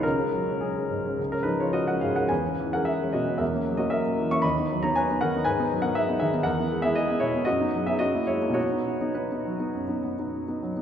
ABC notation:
X:1
M:4/4
L:1/16
Q:1/4=110
K:C#mix
V:1 name="Grand piano"
[CA]4 [CG]4- [CG] [CA] [DB] [Ec] [Fd] [Af] [Ge] [Af] | [K:B] [Bg]3 [Af] [Ge]2 [Fd]2 [Ae]3 [Fd] [Ae]3 [ec'] | [db]3 [ca] [Bg]2 [Af]2 [Bg]3 [Af] [Ge]2 [Ge]2 | [Af]3 [Ge] [Gd]2 [Ec]2 [Fd]3 [Ge] [Fd]2 [Ec]2 |
[Fc]4 [DB]8- [DB]2 z2 |]
V:2 name="Grand piano"
C,, [G,C] F, [G,C]2 [G,C] G,, [G,C] C,, G, E, [G,C]2 [G,C] G,, [G,C] | [K:B] E,, [G,C] E, [G,C]2 [G,C] B,, [G,C] E,, [A,C] F, [A,C]2 [A,C] E, [A,C] | D,, [B,D] F, [B,D]2 [B,D] D, [B,D] G,, [B,D] F, [B,D]2 [B,D] D, [B,D] | E,, [B,E] G, [B,E]2 [B,E] B,, [B,E] F,, [B,D] F, [B,D] F,, [A,E] G, [A,E] |
B,, [B,D] B, [B,D]2 [B,D] F, [B,D] F,, [B,D] B, [B,D]2 [B,D] F, [B,D] |]